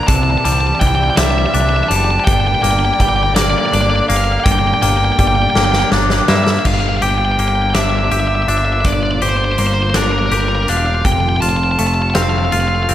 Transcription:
Already playing: D4 D5
0.03 A5 A#5
0.08 C2 C3 E3 C4 G4, kick, closed hi-hat
0.15 A5
0.23 A5
0.30 A5
0.38 A5
0.44 C2 G3 A5, closed hi-hat
0.52 A5
0.61 A5
0.67 A5
0.75 A5
0.80 C2 E3 G5, kick, closed hi-hat
0.87 G5
0.95 G5
1.04 G5
1.10 G5
1.16 C2 G3 E5, snare, closed hi-hat
1.23 E5
1.31 E5
1.39 E5
1.46 E5
1.54 C2 D4 E5, closed hi-hat
1.61 E5
1.69 E5
1.77 E5
1.83 E5
1.88 F#1 G3 A5, closed hi-hat
1.96 A5
2.04 A5
2.11 A5
2.20 A5
2.25 G1 G2 D3 A#3 G5, kick, closed hi-hat
2.33 G5
2.40 G5
2.47 G5
2.55 G5
2.62 G1 A#3 G5, closed hi-hat
2.71 G5
2.79 G5
2.85 G5
2.94 G5
2.99 G1 G3 G5, kick, closed hi-hat
3.09 G5
3.16 G5
3.23 G5
3.35 A#3 D5, snare, closed hi-hat
3.42 D5
3.50 D5
3.58 D5
3.66 D5
3.72 G1 D4 D5, closed hi-hat
3.81 D5
3.90 D5
3.96 D5
4.08 G1 A#3 F5, closed hi-hat
4.16 F5
4.24 F5
4.32 F5
4.40 F5
4.44 G1 G2 G5, kick, closed hi-hat
4.52 G5
4.59 G5
4.68 G5
4.74 G5
4.82 G1 A#3 G5, closed hi-hat
4.89 G5
4.97 G5
5.05 G5
5.12 G5
5.19 G1 G3 G5, kick, closed hi-hat
5.28 G5
5.35 G5
5.42 G5
5.50 G5
5.55 G1 A#3 G5, snare
5.65 G5
5.72 G5, snare
5.80 G5
5.92 G1 D4, snare
6.10 snare
6.28 G2 A#3 E5, snare
6.36 E5
6.44 E5, snare
6.51 E5
6.59 E5
6.65 G1 G2 D3 G3 A#3 F4 F5, kick, crash
6.74 F5
6.80 F5
6.89 F5
6.97 F5
7.02 G1 G4 G5, closed hi-hat
7.09 G5
7.18 G5
7.25 G5
7.32 G5
7.38 G1 A#3 G5, closed hi-hat
7.48 G5
7.56 G5
7.62 G5
7.70 G5
7.75 G1 D4 E5, snare, closed hi-hat
7.83 E5
7.90 E5
7.99 E5
8.05 E5
8.11 G1 G4 E5, closed hi-hat
8.20 E5
8.28 E5
8.35 E5
8.43 E5
8.48 G1 D4 E5, closed hi-hat
8.58 E5
8.65 E5
8.73 E5
8.81 E5, closed hi-hat
8.85 G1 G2 D5, kick
8.93 D5
9.03 D5
9.11 D5
9.21 G1 G4 C5, closed hi-hat
9.29 C5
9.37 C5
9.45 C5
9.52 C5
9.58 G1 A#3 C5, closed hi-hat
9.67 C5
9.74 C5
9.83 C5
9.90 C5
9.94 G1 D4 A#4, snare, closed hi-hat
10.03 A#4
10.12 A#4
10.19 A#4
10.26 A#4
10.31 G1 G4 A#4, closed hi-hat
10.41 A#4
10.49 A#4
10.55 A#4
10.63 A#4
10.68 E1 D4 F5, closed hi-hat
10.77 F5
10.86 F5
10.95 F5
11.04 F1 F2 C3 F3 A3 G5, kick, closed hi-hat
11.12 G5
11.21 G5
11.29 G5
11.36 G5
11.41 F1 F4 A5, closed hi-hat
11.49 A5
11.57 A5
11.64 A5
11.71 A5
11.78 F1 A3 A5, closed hi-hat
11.87 A5
11.94 A5
12.02 A5
12.10 A5
12.15 F1 C4 F5, snare, closed hi-hat
12.23 F5
12.30 F5
12.38 F5
12.45 F5
12.52 F1 F4 F5, closed hi-hat
12.60 F5
12.68 F5
12.75 F5
12.83 F5
12.89 F1 C4 F5, closed hi-hat

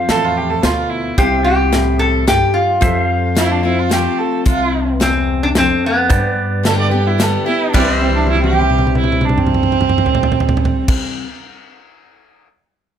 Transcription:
Already playing: F2 F4 A4 C5 F5
0.09 E2 A2 A4, snare, closed hi-hat
0.24 F4
0.37 G4
0.50 A4
0.62 D2 B2 F4 A4 C5, snare, closed hi-hat
0.90 E4
1.17 C2 C3 E4 G4 C5 F5, kick, closed hi-hat
1.39 E5
1.44 G4
1.72 A2, snare, closed hi-hat
1.99 A4
2.27 G2 G4, snare, closed hi-hat
2.54 F4
2.80 F2 F4 A4 C5 E5, kick, closed hi-hat
3.03 F5
3.35 F3 A3 C4 E4 F4, snare, closed hi-hat
3.52 D4
3.63 C4 E4 F4
3.79 F4
3.89 F3 A3 C4 F4 G4, snare, closed hi-hat
4.18 A4
4.46 C2 C3 F4, kick, closed hi-hat
5.00 E2 C4, snare, closed hi-hat
5.43 D4
5.55 F2 C4, snare, closed hi-hat
5.86 B3
6.09 G2 D4 G4 B4 C5 D5, kick, closed hi-hat
6.29 B4
6.63 D3 G3 B3 G4 A4, snare, closed hi-hat
6.74 A3
6.79 D5
6.91 B3 G4
7.07 E4
7.18 D3 G3 B3 G4 A4, snare, closed hi-hat
7.46 B3 E4 G4
7.73 C2 C3 E3 G3 C4 E4 G4 B4 C5 D5, kick, crash
7.94 C5
8.00 C4 E5, high tom
8.09 high tom
8.15 D4, high tom
8.27 E4, high tom
8.35 high tom
8.43 G4, high tom
8.53 high tom
8.61 high tom
8.70 mid tom
8.79 mid tom
8.87 mid tom
8.95 E4, mid tom
9.04 mid tom
9.12 mid tom
9.21 D4, mid tom
9.29 mid tom
9.38 C4, mid tom
9.47 mid tom
9.54 mid tom
9.63 mid tom
9.72 mid tom
9.81 mid tom
9.89 mid tom
9.98 mid tom
10.06 floor tom
10.15 floor tom
10.23 floor tom
10.32 floor tom
10.40 floor tom
10.49 floor tom
10.57 floor tom
10.65 floor tom
10.88 kick, crash

